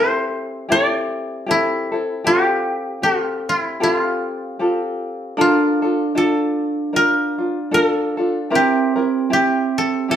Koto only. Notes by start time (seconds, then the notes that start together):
Already playing: G4 A4 C5
0.72 D5
1.51 E4
2.27 G4
3.03 F4
3.49 E4
3.83 F4
5.41 F4
6.18 A4
6.96 A#4
7.74 A4
8.55 G4
9.33 G4
9.78 A4
10.11 A4